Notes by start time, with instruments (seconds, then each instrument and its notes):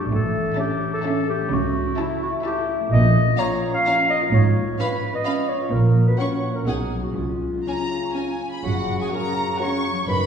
Already playing: harp F#2 F#3 D4 F#4 A4 D5 F#5 A5
0.00 harp A3
0.09 double bass section A1, cello section A2, harp A2, clarinet A4
0.22 harp E3
0.33 harp A3
0.46 harp C#4
0.56 viola section C#4, clarinet G4, harp A4, violin section E5 A5
0.70 harp C#4
0.81 harp C#5
0.93 clarinet A4, harp A5
1.03 viola section C#4, harp C#5, violin section E5 A5
1.17 harp A4
1.29 harp C#4, clarinet G4
1.41 harp A3
1.52 double bass section C#2, cello section C#3, harp C#3, clarinet F#4
1.63 harp C#4
1.75 harp A3
1.86 harp E4
1.98 viola section E4, clarinet E4, harp A4, violin section E5 A5
2.10 harp E4
2.22 clarinet F#4, harp E5
2.34 harp A5
2.45 viola section E4, clarinet G4, violin section E5 A5, harp E5
2.57 harp A4
2.68 harp E4
2.81 harp A3
2.92 double bass section A#1, harp A#2, cello section A#2, clarinet D#5
3.04 harp F3
3.15 harp C#4
3.27 harp F4
3.37 viola section C#4, harp A#4, clarinet C#5, violin section F5 A#5
3.51 harp C#5
3.62 harp F5
3.74 clarinet F5, harp A#5
3.85 viola section C#4, harp F5, violin section F5 A#5
3.98 harp C#5
4.09 harp A#4, clarinet D#5
4.20 harp F4
4.32 double bass section G#1, harp G#2, cello section G#2, clarinet C#5
4.44 harp G#3
4.56 harp C#4
4.68 harp F4
4.79 viola section C#4, harp B4, clarinet B4, violin section F5 B5
4.91 harp C#5
5.03 harp F5
5.15 clarinet D#5, harp B5
5.25 viola section C#4, violin section F5 B5, harp F5
5.39 harp C#5
5.49 harp B4, clarinet C#5
5.61 harp F4
5.72 double bass section A#1, cello section A#2, harp A#2, clarinet A#4
5.85 harp A#3
5.97 harp C#4
6.07 harp F#4, clarinet B4
6.19 viola section C#4, harp A#4, clarinet C#5, violin section F#5 C#6
6.32 harp C#5
6.44 harp F#5
6.54 clarinet A#4, harp A#5
6.66 double bass section B1, cello section B2, harp B2, viola section D#4, clarinet G#4, violin section F#5 G#5
6.80 harp F#3
6.93 harp G#3
7.03 clarinet F#4, harp F#4
7.15 double bass section C#2, harp C#3, cello section C#3, clarinet F4
7.28 harp C#4
7.41 harp G#3
7.53 harp F4
7.66 viola section C#4, harp C#5, violin section G#5 A#5
7.79 harp G#4
7.91 harp F5
8.04 harp C#6
8.15 viola section C#4, harp F5, violin section G#5
8.28 harp G#4
8.41 harp C#5
8.51 harp F4, violin section B5
8.63 double bass section F#1, harp F#2, cello section F#2, bassoon C#3, clarinet F#4, violin section F#5, flute section F#5, oboe C#6
8.80 harp C#3
8.96 harp F#3
9.01 clarinet G#4, flute section G#5, violin section G#5
9.12 viola section C#4 F#4, harp F#4, clarinet A#4, violin section F#5 A#5 C#6, flute section A#5
9.29 harp C#5
9.45 harp F#4
9.60 viola section C#4 F#4, clarinet C#5, harp C#5, violin section F#5 C#6, flute section C#6
9.77 harp F#4
9.93 harp F#3
10.08 double bass section F#1, harp F#2, cello section F#2, bassoon D#3, clarinet B4, flute section B5, oboe B5, violin section B5